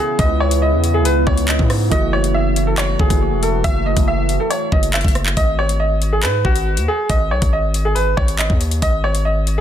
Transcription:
Already playing: C#3 B3 E4 G#4
0.19 C#2 D#5, kick, closed hi-hat
0.40 C#5
0.51 closed hi-hat
0.62 D#5
0.73 E2
0.84 closed hi-hat
0.94 G#4
1.00 C#2
1.05 B4, closed hi-hat
1.27 C#2 C#5, kick
1.38 closed hi-hat
1.48 D#5, clap, closed hi-hat
1.59 G#2, kick
1.70 cross-stick, open hi-hat
1.90 F#1 E3 A3 F#4 D#5, kick, closed hi-hat
2.13 C#5
2.24 closed hi-hat
2.34 E5
2.56 closed hi-hat
2.67 A4
2.78 C#5, clap, closed hi-hat
2.99 F#1 G#4, kick
3.10 F#1, kick, closed hi-hat
3.32 E1
3.43 A4, closed hi-hat
3.64 F#1 E5, kick, closed hi-hat
3.86 D#5
3.97 F#1, kick, closed hi-hat
4.08 E5
4.29 closed hi-hat
4.40 A4
4.50 C#5, closed hi-hat
4.72 F#1 D#5, kick
4.83 closed hi-hat
4.94 E5, clap, closed hi-hat
5.01 F#1, kick, closed hi-hat
5.08 closed hi-hat
5.15 cross-stick, closed hi-hat
5.26 clap
5.37 G#1 D#5, kick, closed hi-hat
5.59 C#5
5.69 closed hi-hat
5.80 D#5
6.02 closed hi-hat
6.13 G#4
6.23 G#2 B4, clap, closed hi-hat
6.45 G#1 F#4, kick
6.56 closed hi-hat
6.77 D#2, closed hi-hat
6.88 G#4
7.10 G#1 D#5, kick, closed hi-hat
7.31 B1 C#5
7.42 G#1, kick, closed hi-hat
7.53 D#5
7.74 closed hi-hat
7.85 G#4
7.95 B4, closed hi-hat
8.17 G#1 C#5, kick
8.28 closed hi-hat
8.39 D#5, clap, closed hi-hat
8.50 D#2, kick
8.61 closed hi-hat
8.71 closed hi-hat
8.82 G#1 D#5, kick, closed hi-hat
9.04 C#5
9.15 closed hi-hat
9.25 D#5
9.47 closed hi-hat

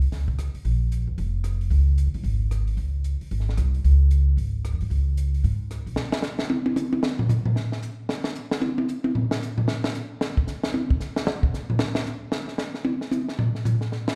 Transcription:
Already playing: C2
0.02 open hi-hat
0.12 C#2, snare, open hi-hat
0.28 kick
0.39 cross-stick, closed hi-hat
0.54 muted upright bass stroke, open hi-hat
0.65 A#1, open hi-hat
0.92 closed hi-hat
1.07 F2
1.18 F1, open hi-hat
1.44 cross-stick, closed hi-hat
1.61 open hi-hat
1.70 C#2, open hi-hat
1.98 closed hi-hat
2.06 D#2
2.14 C2, open hi-hat
2.24 G#1, open hi-hat
2.51 cross-stick, closed hi-hat
2.67 open hi-hat
2.77 C#2, open hi-hat
3.04 closed hi-hat
3.21 muted upright bass stroke, open hi-hat
3.31 G#1, open hi-hat
3.40 snare
3.49 snare
3.57 C2, cross-stick, closed hi-hat
3.74 open hi-hat
3.84 C#2, open hi-hat
4.11 closed hi-hat
4.37 G#1, open hi-hat
4.65 cross-stick, closed hi-hat
4.72 E2
4.81 G#2, open hi-hat
4.90 C#2, open hi-hat
5.17 closed hi-hat
5.34 open hi-hat
5.44 G#2, open hi-hat
5.71 cross-stick, closed hi-hat
5.86 B1, open hi-hat
5.96 snare
6.12 snare
6.22 snare, hi-hat pedal
6.39 snare
6.50 high tom
6.66 high tom
6.76 hi-hat pedal, high tom
6.93 high tom
7.03 snare
7.19 floor tom
7.29 floor tom, hi-hat pedal
7.46 floor tom
7.56 snare
7.72 snare
7.82 hi-hat pedal
8.09 snare
8.24 snare
8.35 hi-hat pedal
8.51 snare
8.62 high tom
8.78 high tom
8.88 hi-hat pedal
9.04 high tom
9.15 floor tom
9.31 snare
9.42 hi-hat pedal
9.58 floor tom
9.68 snare
9.84 snare
9.94 hi-hat pedal
10.21 snare
10.37 kick
10.47 snare, hi-hat pedal
10.63 snare
10.74 high tom
10.90 kick
11.00 snare, hi-hat pedal
11.16 snare
11.27 snare
11.43 kick
11.54 snare, hi-hat pedal
11.70 floor tom
11.79 snare
11.95 snare
12.06 hi-hat pedal
12.32 snare
12.48 snare
12.58 snare, hi-hat pedal
12.74 snare
12.85 high tom
13.01 snare
13.11 hi-hat pedal, high tom
13.29 snare
13.39 floor tom
13.55 snare
13.65 floor tom, hi-hat pedal
13.81 snare
13.92 snare
14.08 snare

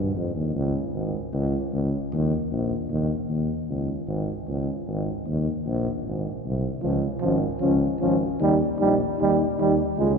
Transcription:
Already playing: G2
0.16 F2
0.35 D#2
0.55 C#2
0.94 G#1
1.33 C#2
1.73 C#2
2.13 D#2
2.51 A#1
2.90 D#2
3.29 D#2
3.69 C#2
4.08 G#1
4.48 C#2
4.87 G#1
5.27 D#2
5.66 A#1
6.05 G#1
6.45 C2
6.81 C#2 F3 C#4
7.20 G#1 F3 C#4
7.60 C#2 F3 C#4
8.00 G#1 F3 C#4
8.40 D#2 G3 D#4
8.78 A#1 G3 D#4
9.17 D#2 G3 D#4
9.58 D#2 G3 D#4
9.98 C#2 G#3 F4

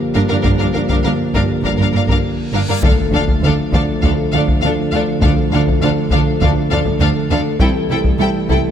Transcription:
Already playing: D3 F3 A#3 G4
0.15 G1 G2 D4 A#4 F5
0.28 G2 D4 A#4 F5
0.43 G1 G2 D4 A#4 F5, taiko, reverse cymbal
0.58 G2 D4 A#4 F5
0.73 G1 G2 D4 A#4 F5
0.89 G2 D4 A#4 F5, taiko
1.04 G1 G2 D4 A#4 F5
1.33 G1 G2 D4 A#4 F5, taiko
1.63 G1 G2 D4 A#4 F5, taiko
1.77 G2 D4 A#4
1.82 F5
1.93 G1 G2 D4 A#4 F5
2.08 G2 D4 A#4 F5, taiko
2.53 G1 G2 D4 A#4 F5
2.68 G2 D4 A#4 F5
2.82 D2 D3 F3 A3 D4 A4 F5, taiko, impact
3.12 D2 D4 A4 F5
3.28 taiko
3.42 D2 A4 F5
3.46 D4
3.73 D2 D4 A4 F5, taiko
4.02 D2 D4 A4 F5, taiko
4.32 D2 D4 A4 F5
4.48 taiko
4.61 D2 A4 F5
4.65 D4
4.92 D2 D4 A4 F5
5.21 D2 D4 A4 F5, taiko
5.51 D2 D4 A4 F5
5.67 taiko
5.81 D2 D4 A4 F5
6.10 D2 D4 A4 F5, taiko
6.41 D2 D4 A4 F5, taiko
6.70 D2 D4 A4 F5
6.85 taiko
7.00 D2 D4 A4 F5
7.30 D2 D4 A4 F5
7.59 C2 E3 G3 A3 E4 A4 G5, taiko
7.89 C2 E4 A4 G5
8.04 taiko
8.19 C2 E4 A4 G5
8.49 C2 E4 A4 G5, taiko

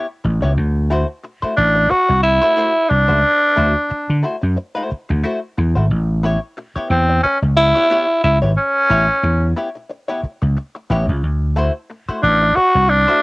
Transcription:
0.24 A1, muted hollow-body jazz guitar stroke
0.42 C#2 B3 E4 G4 C#5
0.57 D2
0.90 A3 E4 F#4 C5
1.23 muted hollow-body jazz guitar stroke
1.42 A3 E4 F#4 C5, muted slap bass stroke
1.56 A1 D4, muted hollow-body jazz guitar stroke
1.75 muted hollow-body jazz guitar stroke
1.90 F#4, muted hollow-body jazz guitar stroke, muted slap bass stroke
2.09 C2, muted hollow-body jazz guitar stroke
2.23 E4
2.42 A3 E4 F#4 C5
2.56 A3 E4 F#4 C5
2.89 C2 D4, muted hollow-body jazz guitar stroke
3.08 C#2 A3 E4 F#4 C5
3.56 D2 A3 E4 F#4 C5
3.90 muted hollow-body jazz guitar stroke, muted slap bass stroke
4.10 D3
4.23 A3 E4 F#4 C5
4.42 F#2, muted hollow-body jazz guitar stroke
4.57 muted hollow-body jazz guitar stroke
4.75 A3 E4 F#4 C5
4.90 muted hollow-body jazz guitar stroke, muted slap bass stroke
5.09 D2, muted hollow-body jazz guitar stroke
5.24 A3 E4 F#4 C5
5.58 E2, muted hollow-body jazz guitar stroke
5.75 G#1 A3 E4 F#4 C5
5.91 A1
6.23 B3 E4 G4 C#5
6.57 muted hollow-body jazz guitar stroke
6.76 B3 E4 G4 C#5, muted slap bass stroke
6.90 E2 C4, muted hollow-body jazz guitar stroke
7.09 muted hollow-body jazz guitar stroke
7.23 C#4, muted slap bass stroke, muted hollow-body jazz guitar stroke
7.42 C#2, muted hollow-body jazz guitar stroke
7.57 E4
7.75 B3 E4 G4 C#5
7.90 B3 E4 G4 C#5
8.23 C#2 E4, muted hollow-body jazz guitar stroke
8.42 G#1 B3 E4 G4 C#5
8.57 C#4
8.90 A1 B3 E4 G4 C#5
9.23 E2, muted hollow-body jazz guitar stroke
9.56 B3 E4 G4 C#5
9.75 muted hollow-body jazz guitar stroke
9.90 muted hollow-body jazz guitar stroke
10.08 B3 E4 G4 C#5
10.23 muted slap bass stroke, muted hollow-body jazz guitar stroke
10.42 C#2, muted hollow-body jazz guitar stroke
10.57 muted hollow-body jazz guitar stroke
10.75 muted hollow-body jazz guitar stroke
10.90 A1 B3 E4 G4 C#5
11.08 C#2, muted hollow-body jazz guitar stroke
11.23 D2
11.56 A3 E4 F#4 C5
11.90 muted hollow-body jazz guitar stroke
12.08 A3 E4 F#4 C5, muted slap bass stroke
12.23 A1 D4, muted hollow-body jazz guitar stroke
12.42 muted hollow-body jazz guitar stroke
12.56 F#4, muted hollow-body jazz guitar stroke, muted slap bass stroke
12.75 C2, muted hollow-body jazz guitar stroke
12.89 D4
13.08 A3 E4 F#4 C5

